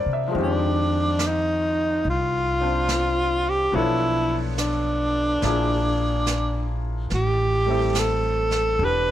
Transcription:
Already playing: upright piano E3 A#3 C4 D4 G4 A#4 C5 D5
0.06 upright bass C3
0.13 upright piano E5
0.28 upright piano F3 G#3
0.33 upright bass F2, upright piano D#3 C4, brush sweep
0.40 tenor saxophone D4, upright piano G4
1.19 snare, hi-hat pedal
1.27 tenor saxophone D#4
2.04 upright bass C2, brush sweep
2.10 tenor saxophone F4
2.61 upright piano C4 D4 F4 C5
2.89 snare, hi-hat pedal
3.50 tenor saxophone G4
3.72 upright bass B1, upright piano F3 B3 D4 C#5, tenor saxophone E4, brush sweep
3.77 upright piano A4
4.58 tenor saxophone D4, snare, hi-hat pedal
5.42 upright bass A#1, upright piano F3 A#3 D4 E4, brush sweep, snare
5.46 upright piano G#4
6.27 snare, hi-hat pedal
7.10 upright bass A1, tenor saxophone G4, brush sweep, snare
7.66 upright piano G3 A3 C4
7.70 upright piano E4 A4
7.95 snare, hi-hat pedal
7.99 tenor saxophone A4
8.51 snare
8.79 upright bass E1, upright piano D4, brush sweep
8.83 upright piano G4, tenor saxophone B4

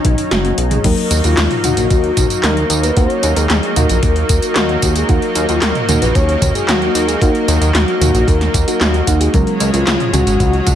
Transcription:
Already playing: analog synth pad F#3 C#4 D#4, soft synth lead D#4
0.05 analog synth bass B1, kick, closed hi-hat, mid tom
0.18 closed hi-hat
0.31 analog synth bass F#1, soft synth lead F#4, snare, closed hi-hat, high tom
0.45 closed hi-hat, high tom
0.58 analog synth bass B1, closed hi-hat
0.71 soft synth lead G#4, closed hi-hat, mid tom
0.84 analog synth bass D#2, fm electric piano F#3 A#3 D#4, analog synth pad F#3 A#3 D#4, soft synth lead A#4, kick, closed hi-hat, crash, tambourine
0.97 closed hi-hat
1.11 analog synth bass D#2, closed hi-hat, tambourine
1.24 analog synth bass D#2, soft synth lead F4, closed hi-hat, tambourine
1.37 analog synth bass D#2, snare, clap, closed hi-hat, tambourine
1.51 closed hi-hat, mid tom
1.64 analog synth bass D#2, fm electric piano A#3 D#4 F#4, soft synth lead F#4, closed hi-hat, mid tom, tambourine
1.77 analog synth bass A#1, closed hi-hat, tambourine
1.90 analog synth bass D#2, kick, closed hi-hat, tambourine
2.04 closed hi-hat
2.17 analog synth bass D#2, kick, closed hi-hat, mid tom, tambourine
2.30 closed hi-hat, tambourine
2.43 analog synth bass D#2, soft synth lead A#4, snare, clap, closed hi-hat, tambourine
2.57 closed hi-hat
2.70 analog synth bass D#2, closed hi-hat, tambourine
2.83 soft synth lead B4, closed hi-hat, tambourine
2.97 analog synth bass D#2, fm electric piano A#3 D#4 F#4, soft synth lead C#5, kick, closed hi-hat, tambourine
3.10 closed hi-hat
3.23 analog synth bass D#2, closed hi-hat, tambourine
3.36 analog synth bass D#2, soft synth lead G#4, closed hi-hat, tambourine
3.50 analog synth bass D#2, snare, clap, closed hi-hat, tambourine
3.63 closed hi-hat
3.76 analog synth bass D#2, fm electric piano A#3 D#4 F#4, soft synth lead A#4, closed hi-hat, mid tom, tambourine
3.89 analog synth bass A#1, closed hi-hat, tambourine
4.03 analog synth bass D#2, kick, closed hi-hat, tambourine
4.16 closed hi-hat
4.29 analog synth bass D#2, kick, closed hi-hat, tambourine
4.42 closed hi-hat, tambourine
4.56 analog synth bass D#2, soft synth lead F#4, snare, clap, closed hi-hat, tambourine
4.69 closed hi-hat
4.82 analog synth bass D#2, kick, closed hi-hat, tambourine
4.96 soft synth lead G#4, closed hi-hat, tambourine
5.09 analog synth bass D#2, fm electric piano A#3 D#4 F#4, soft synth lead A#4, kick, closed hi-hat, tambourine
5.22 closed hi-hat
5.35 analog synth bass D#2, closed hi-hat, tambourine
5.49 analog synth bass D#2, soft synth lead F4, closed hi-hat, tambourine
5.62 analog synth bass D#2, soft synth lead A#4, snare, clap, closed hi-hat, tambourine
5.75 closed hi-hat, mid tom
5.89 analog synth bass D#2, fm electric piano A#3 D#4 F#4, closed hi-hat, mid tom, tambourine
6.02 analog synth bass A#1, soft synth lead B4, closed hi-hat, tambourine
6.15 analog synth bass D#2, soft synth lead C#5, kick, closed hi-hat, tambourine
6.29 closed hi-hat
6.42 analog synth bass D#2, kick, closed hi-hat, mid tom, tambourine
6.55 soft synth lead G#4, closed hi-hat, tambourine
6.68 analog synth bass D#2, soft synth lead F#4, snare, clap, closed hi-hat, tambourine
6.82 closed hi-hat
6.95 analog synth bass D#2, closed hi-hat, tambourine
7.07 soft synth lead G#4, closed hi-hat, tambourine
7.21 analog synth bass D#2, fm electric piano A#3 D#4 F#4, soft synth lead A#4, kick, closed hi-hat, tambourine
7.35 closed hi-hat
7.48 analog synth bass D#2, closed hi-hat, tambourine
7.61 analog synth bass D#2, closed hi-hat, tambourine
7.74 analog synth bass D#2, soft synth lead F#4, snare, clap, closed hi-hat, tambourine
7.88 closed hi-hat
8.01 analog synth bass D#2, fm electric piano A#3 D#4 F#4, closed hi-hat, mid tom, tambourine
8.14 analog synth bass A#1, closed hi-hat, tambourine
8.27 analog synth bass D#2, soft synth lead A#4, kick, closed hi-hat, tambourine
8.41 snare, closed hi-hat
8.54 analog synth bass D#2, kick, closed hi-hat, tambourine
8.68 fm electric piano A#3 D#4 F#4, closed hi-hat, tambourine
8.81 analog synth bass D#2, soft synth lead F#4, snare, clap, closed hi-hat, tambourine
8.94 closed hi-hat
9.07 analog synth bass D#2, fm electric piano A#3 D#4 F#4, kick, closed hi-hat, tambourine
9.20 soft synth lead G#4, closed hi-hat, tambourine
9.34 analog synth bass C#2, synth arpeggio sound C#3, fm electric piano F#3 G#3 C#4, analog synth pad F#3 G#3 C#4, soft synth lead A#4, kick, closed hi-hat, tambourine
9.47 closed hi-hat
9.60 analog synth bass C#2, synth arpeggio sound G#3, closed hi-hat, tambourine
9.73 analog synth bass C#2, soft synth lead F4, closed hi-hat, tambourine
9.87 analog synth bass C#2, synth arpeggio sound C#3, snare, clap, closed hi-hat, tambourine
10.00 closed hi-hat, mid tom
10.13 analog synth bass C#2, fm electric piano G#3 C#4 F#4, synth arpeggio sound C#4, soft synth lead F#4, closed hi-hat, mid tom, tambourine
10.27 analog synth bass G#1, closed hi-hat, tambourine
10.40 analog synth bass C#2, synth arpeggio sound C#3, kick, closed hi-hat, tambourine
10.53 closed hi-hat
10.66 analog synth bass C#2, synth arpeggio sound F#4, kick, closed hi-hat, mid tom, tambourine

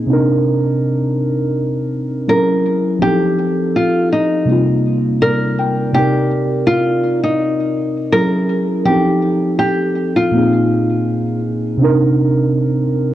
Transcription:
Already playing: synth keys A#2 A#3 C4 D#4 G#4
0.07 synth keys C3 C4 D4
0.12 synth keys D#4 A#4
2.27 synth keys F#3 C#4 E4 G#4 A4, nylon-string guitar A#4
2.37 synth keys A#4
2.99 synth keys F3 C4 D#4, nylon-string guitar G4
3.04 synth keys G4 A4
3.76 nylon-string guitar F4
4.13 nylon-string guitar D#4
4.45 synth keys C3 G3 A#3 C4
4.50 synth keys D#4 F4
5.22 nylon-string guitar A#4, synth keys D5
5.59 synth keys G5
5.92 synth keys C3 C4 D5, nylon-string guitar G4
5.97 synth keys D#4 A#4
6.67 nylon-string guitar F4
7.23 nylon-string guitar D#4
8.12 synth keys F#3 C#4 E4 G#4 A#4, nylon-string guitar A#4
8.85 synth keys F3 C4 D#4, nylon-string guitar G4
8.90 synth keys G4 A4
9.59 nylon-string guitar G4
10.16 nylon-string guitar F4
10.31 synth keys A#2 A#3 C4
10.36 synth keys D#4 G#4
11.77 synth keys C3 C4 D4
11.82 synth keys D#4 A#4

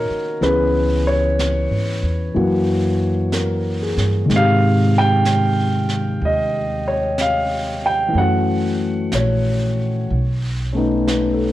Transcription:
Already playing: grand piano D#3 A#3 C#4 D#4 F#4 A#4 C#5 D#5
0.10 muted upright bass stroke
0.41 upright bass C#2, grand piano E3 B3 C#4 G#4 B4, brush sweep, snare
1.07 grand piano C#5
1.39 brush sweep, snare, hi-hat pedal
1.71 upright bass G#2
2.03 upright bass E2
2.34 upright bass F#2, grand piano E3 F#3 A#3 F#4, brush sweep
3.32 grand piano A#4, brush sweep, snare, hi-hat pedal
3.82 grand piano G#4
3.97 upright bass G2, snare
4.26 upright bass G#2, grand piano D#3 G#3
4.30 grand piano C3, brush sweep, snare
4.36 grand piano G4 F5
4.98 grand piano G5
5.26 brush sweep, snare, hi-hat pedal
5.89 snare
6.21 upright bass D#2, grand piano D#5, brush sweep
6.88 grand piano C#5
7.18 grand piano F5, brush sweep, snare, hi-hat pedal
7.86 grand piano G5
8.09 grand piano E3 A3
8.15 upright bass F#2, grand piano C#4 F#5, brush sweep
8.20 grand piano F#4
9.12 upright bass A#1, grand piano C#5, brush sweep, snare, hi-hat pedal
10.10 upright bass B1, brush sweep
10.73 grand piano A3 B3 C#4
10.77 grand piano D#4
11.08 grand piano B4, brush sweep, snare, hi-hat pedal
11.33 grand piano A4

